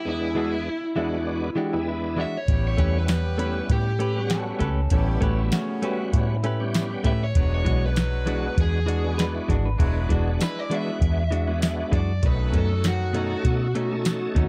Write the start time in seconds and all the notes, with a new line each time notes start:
0.05 E2 G#3 B3 D4 E4 G#4
0.35 E3 G#3 D4 F#4
0.96 E2 E3 G#3 B3 D4 F#4 E5
1.27 D5
1.43 B4
1.56 E3 G#3 D4 F#4 G4
1.73 E2 G#3 B3 D4 E4
1.88 E4
2.16 E3 G#3 D4 F#4
2.21 E5
2.37 C#5
2.48 A1 G3 B3 C#4 E4 G4, kick, closed hi-hat
2.68 C#5
2.77 E2 A3 C#4 G4 B4, kick, closed hi-hat
2.98 B4
3.08 G3 B3 C#4 G4, snare, closed hi-hat, tambourine
3.38 G3 A3 B3 C#4 E4 G4 B4, closed hi-hat
3.70 A2 G4, kick, closed hi-hat
3.99 A3 C#4 G4 B4, closed hi-hat
4.16 G3 B3 C#4 F#4
4.30 C#4 A4, snare, closed hi-hat, tambourine
4.59 C#2 A3 C#4 G4 A4 B4, kick, closed hi-hat
4.90 A1 G3 B3 C#4 E4 G4 A4, kick, closed hi-hat
5.21 A1 A3 C#4 F#4 G4 B4, kick, closed hi-hat
5.51 C#3 A3 B3 C#4 F#4, snare, closed hi-hat, tambourine
5.82 G3 A3 B3 C#4 F#4 G4 B4, closed hi-hat
6.13 A2 C#4 E4, kick, closed hi-hat
6.43 A3 C#4 E4 G4 B4, closed hi-hat
6.60 G3 B3 C#4 G4
6.74 snare, closed hi-hat, tambourine
7.04 A2 A3 C#4 G4 B4 E5, kick, closed hi-hat
7.24 C#5
7.35 E1 F#3 G#3 B3 D4 F#4, kick, closed hi-hat
7.55 C#5
7.65 B1 E3 G#3 D4 F#4, kick, closed hi-hat
7.86 B4
7.95 F#3 G#3 D4 F#4, snare, closed hi-hat, tambourine
8.26 E3 G#3 B3 D4 F#4, closed hi-hat
8.58 E2 G#4, kick, closed hi-hat
8.86 E3 G#3 D4 F#4, closed hi-hat
9.04 G#3 B3 D4 F#4
9.18 B4, snare, closed hi-hat, tambourine
9.35 E4
9.49 G#1 E3 G#3 D4 F#4, kick, closed hi-hat
9.65 B4
9.78 E1 F#3 G#3 B3 D4 E4 F#4, kick, closed hi-hat
10.09 E1 E3 G#3 D4 F#4, kick, closed hi-hat
10.38 E3 G#3 D4 E4, snare, closed hi-hat, tambourine
10.43 B4
10.59 D5
10.70 E3 G#3 B3 D4 F#4 E5, closed hi-hat
11.01 E2, kick, closed hi-hat
11.31 E3 G#3 D4 F#4, closed hi-hat
11.48 G#3 B3 D4 F#4
11.62 snare, closed hi-hat, tambourine
11.92 F#2 E3 G#3 D4 F#4 D5, kick, closed hi-hat
12.23 B1 D#3 A3 C#4 D#4 F#4 B4, kick, closed hi-hat
12.53 F#2 B2 A3 C#4 D#4, kick, closed hi-hat
12.58 A4
12.83 D#3 A3 C#4 D#4, snare, closed hi-hat, tambourine
12.88 F#4
13.13 B2 A3 C#4 D#4 A4, closed hi-hat
13.45 B2, kick, closed hi-hat
13.75 B2 A3 C#4 D#4, closed hi-hat
13.92 A3 C#4 D#4 A4
14.05 snare, closed hi-hat, tambourine
14.35 D#2 B2 A3 C#4 D#4, kick, closed hi-hat